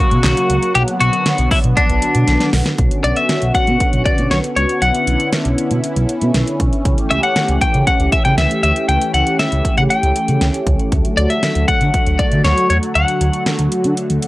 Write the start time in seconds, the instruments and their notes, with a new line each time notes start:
Already playing: analog synth pad C#3 F#3 A#3 F#5, clean electric guitar F#4
0.11 analog synth bass B2, closed hi-hat
0.24 analog synth bass B1, snare, clap, closed hi-hat
0.37 closed hi-hat
0.50 analog synth bass C#2, closed hi-hat
0.63 closed hi-hat
0.75 analog synth bass B1, analog synth pad D3 B3, clean electric guitar G4, closed hi-hat
0.88 closed hi-hat
1.01 analog synth bass B1, clean electric guitar F#4, closed hi-hat
1.13 closed hi-hat
1.26 snare, closed hi-hat
1.38 analog synth bass B1, closed hi-hat
1.51 clean electric guitar E4, kick, open hi-hat
1.64 analog synth bass B2, closed hi-hat
1.77 clean electric guitar D4, kick, closed hi-hat
1.90 analog synth bass B1, closed hi-hat
2.02 closed hi-hat
2.15 analog synth bass B2, closed hi-hat
2.28 analog synth bass B1, snare, closed hi-hat
2.40 snare, closed hi-hat
2.53 analog synth bass B1, snare, open hi-hat
2.66 snare, closed hi-hat
2.78 analog synth bass B1, analog synth pad D3 B3 C#4 F#4, kick, closed hi-hat
2.91 closed hi-hat
3.04 analog synth bass B1, clean electric guitar D5, closed hi-hat
3.16 clean electric guitar E5, closed hi-hat
3.29 snare, closed hi-hat
3.42 analog synth bass B1, closed hi-hat
3.55 clean electric guitar F#5, kick, closed hi-hat
3.67 analog synth bass B2, closed hi-hat
3.80 kick, closed hi-hat
3.93 analog synth bass B1, closed hi-hat
4.06 clean electric guitar D5, kick, closed hi-hat
4.18 analog synth bass B2, closed hi-hat
4.31 analog synth bass B1, clean electric guitar C#5, snare, closed hi-hat
4.44 closed hi-hat
4.56 analog synth bass C#2, clean electric guitar C#5, closed hi-hat
4.69 closed hi-hat
4.82 analog synth bass B1, analog synth pad E4, clean electric guitar F#5, closed hi-hat
4.95 closed hi-hat
5.07 analog synth bass B1, closed hi-hat
5.20 closed hi-hat
5.33 snare, closed hi-hat
5.45 analog synth bass B1, closed hi-hat
5.58 closed hi-hat
5.71 analog synth bass B2, closed hi-hat
5.84 closed hi-hat
5.96 analog synth bass B1, closed hi-hat
6.09 closed hi-hat
6.21 analog synth bass B2, closed hi-hat
6.34 analog synth bass B1, snare, closed hi-hat
6.47 closed hi-hat
6.60 analog synth bass B1, kick, closed hi-hat
6.73 closed hi-hat
6.85 analog synth bass C#2, analog synth pad E3 A3 G4, kick, closed hi-hat
6.98 closed hi-hat
7.11 analog synth bass C#2, clean electric guitar E5, closed hi-hat
7.23 clean electric guitar F#5, closed hi-hat
7.36 snare, closed hi-hat
7.48 analog synth bass C#2, closed hi-hat
7.61 clean electric guitar G5, kick, closed hi-hat
7.74 analog synth bass C#3, closed hi-hat
7.87 clean electric guitar F#5, kick, closed hi-hat
8.00 analog synth bass C#2, closed hi-hat
8.12 clean electric guitar E5, kick, closed hi-hat
8.25 analog synth bass C#3, clean electric guitar G5, closed hi-hat
8.38 analog synth bass C#2, clean electric guitar E5, snare, closed hi-hat
8.51 closed hi-hat
8.63 analog synth bass D2, clean electric guitar E5, closed hi-hat
8.76 closed hi-hat
8.89 analog synth bass C#2, clean electric guitar G5, closed hi-hat
9.01 closed hi-hat
9.14 analog synth bass C#2, clean electric guitar F#5, closed hi-hat
9.27 closed hi-hat
9.39 clean electric guitar E5, snare, closed hi-hat
9.52 analog synth bass C#2, closed hi-hat
9.65 kick, closed hi-hat
9.77 analog synth bass C#3, clean electric guitar F#5, closed hi-hat
9.90 clean electric guitar G5, closed hi-hat
10.03 analog synth bass C#2, closed hi-hat
10.16 closed hi-hat
10.28 analog synth bass C#3, closed hi-hat
10.41 analog synth bass C#2, snare, closed hi-hat
10.54 closed hi-hat
10.67 analog synth bass C#2, kick, closed hi-hat
10.79 closed hi-hat
10.92 analog synth bass D2, analog synth pad D3 F#3 F#4, kick, closed hi-hat
11.05 closed hi-hat
11.17 analog synth bass D2, clean electric guitar D5, closed hi-hat
11.30 clean electric guitar E5, closed hi-hat
11.43 snare, closed hi-hat
11.55 analog synth bass D2, closed hi-hat
11.68 clean electric guitar F#5, kick, closed hi-hat
11.81 analog synth bass D3, closed hi-hat
11.94 kick, closed hi-hat
12.06 analog synth bass D2, closed hi-hat
12.19 clean electric guitar D5, kick, closed hi-hat
12.32 analog synth bass D3, closed hi-hat
12.44 analog synth bass D2, clean electric guitar C#5, snare, closed hi-hat
12.58 closed hi-hat
12.70 analog synth bass E2, clean electric guitar C#5, closed hi-hat
12.83 closed hi-hat
12.95 analog synth bass D2, clean electric guitar F#5, closed hi-hat
13.08 closed hi-hat
13.21 analog synth bass D2, closed hi-hat
13.33 closed hi-hat
13.46 snare, closed hi-hat
13.59 analog synth bass D2, closed hi-hat
13.72 closed hi-hat
13.84 analog synth bass D3, closed hi-hat
13.97 closed hi-hat
14.10 analog synth bass D2, closed hi-hat
14.22 closed hi-hat